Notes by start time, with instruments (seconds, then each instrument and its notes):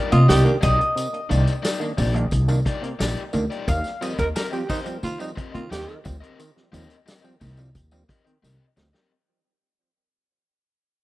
Already playing: overdriven electric guitar A#3 D#4 G4, mandolin A#4
0.11 clav C3, upright bass C3, tenor saxophone F4, mandolin D#5, muted overdriven electric guitar stroke, closed hi-hat
0.28 upright bass C2, clav C3, overdriven electric guitar A#3 D#4 G4 D5, tenor saxophone G4, snare, closed hi-hat, tambourine
0.44 clav D#3 A#3 D4, muted overdriven electric guitar stroke, closed hi-hat
0.61 upright bass B1, overdriven electric guitar A#3 D#4 G4 D5, clav A#3 D4, mandolin D#5, kick, closed hi-hat, tambourine
0.78 muted overdriven electric guitar stroke, closed hi-hat
0.96 clav C3, closed hi-hat, tambourine
1.13 clav A#3 D4, closed hi-hat
1.29 upright bass C2, clav D#3 A#3 D4, overdriven electric guitar A#3 D#4 G4 D5, closed hi-hat, tambourine
1.47 closed hi-hat, tambourine
1.62 overdriven electric guitar A#3 D#4 G4 D5, snare, closed hi-hat, tambourine
1.80 clav D#3 A#3 D4, muted overdriven electric guitar stroke, tambourine
1.97 upright bass A#1, clav C3, overdriven electric guitar A#3 D#4 G4 D5, kick, open hi-hat, tambourine
2.14 clav D#3 A#3 D4, muted overdriven electric guitar stroke, closed hi-hat
2.31 upright bass C2, kick, closed hi-hat, tambourine
2.48 clav D#3 A#3 D4, muted overdriven electric guitar stroke, tambourine
2.66 overdriven electric guitar A#3 D#4 G4 D5, kick, closed hi-hat
2.82 clav C3, muted overdriven electric guitar stroke, closed hi-hat
2.99 upright bass A#1, overdriven electric guitar A#3 D#4 G4 D5, snare, closed hi-hat, tambourine
3.17 closed hi-hat
3.33 upright bass D2, clav D#3 A#3 D4, muted overdriven electric guitar stroke, closed hi-hat, tambourine
3.50 overdriven electric guitar A#3 D#4 G4 D5, closed hi-hat
3.68 upright bass D#2, clav D#3, mandolin F5, kick, closed hi-hat, tambourine
3.84 clav G3 C4, snare, closed hi-hat, tambourine
4.01 clav F3 G3 C4, overdriven electric guitar C4 G4 A#4 D#5, mandolin D#5, closed hi-hat, tambourine
4.18 upright bass D#2, tenor saxophone A#4, mandolin A#4, kick, closed hi-hat, tambourine
4.36 overdriven electric guitar C4 G4 A#4 D#5, mandolin A#4, snare, closed hi-hat, tambourine
4.52 clav F3 G3 C4, tenor saxophone G4, muted overdriven electric guitar stroke, closed hi-hat, tambourine
4.69 clav D#3, overdriven electric guitar C4 G4 A#4 D#5, tenor saxophone D#4, mandolin C5, kick, open hi-hat, tambourine
4.85 clav F3 G3 C4, muted overdriven electric guitar stroke, closed hi-hat, tambourine
5.03 upright bass D#3, tenor saxophone F4, closed hi-hat, tambourine
5.19 clav F3 G3 C4, tenor saxophone D#4, muted overdriven electric guitar stroke, tambourine
5.36 overdriven electric guitar C4 G4 A#4 D#5, muted upright bass stroke, kick, closed hi-hat
5.53 clav D#3, upright bass D#3, tenor saxophone F4, muted overdriven electric guitar stroke, closed hi-hat
5.70 upright bass D#2, clav G3 C4, overdriven electric guitar C4 G4 A#4 D#5, tenor saxophone G4, snare, closed hi-hat, tambourine
5.89 clav D#3, closed hi-hat
6.04 upright bass D2, clav F3 G3 C4, muted overdriven electric guitar stroke, kick, closed hi-hat, tambourine
6.20 overdriven electric guitar C4 G4 A#4 D#5, closed hi-hat
6.39 clav D#3, closed hi-hat, tambourine
6.56 clav G3 C4, snare
6.72 upright bass D#2, clav F3 G3 C4, overdriven electric guitar C4 G4 A#4 D#5, closed hi-hat, tambourine
6.90 closed hi-hat, tambourine
7.06 overdriven electric guitar C4 G4 A#4 D#5, snare, closed hi-hat, tambourine
7.23 clav F3 G3 C4, muted overdriven electric guitar stroke, tambourine
7.40 upright bass C2, clav D#3, overdriven electric guitar C4 G4 A#4 D#5, kick, open hi-hat, tambourine
7.57 clav F3 G3 C4, muted overdriven electric guitar stroke, closed hi-hat, tambourine
7.75 upright bass D#2, kick, closed hi-hat, tambourine
7.91 clav F3 G3 C4, muted overdriven electric guitar stroke, tambourine
8.09 overdriven electric guitar C4 G4 A#4 D#5, kick, closed hi-hat
8.25 clav D#3, muted overdriven electric guitar stroke, closed hi-hat
8.42 upright bass C2, clav D#3, overdriven electric guitar C4 G4 A#4 D#5, snare, tambourine
8.76 upright bass D2, clav F3 G3 C4, muted overdriven electric guitar stroke, snare, tambourine
8.93 clav G3 C4, overdriven electric guitar C4 G4 A#4 D#5, snare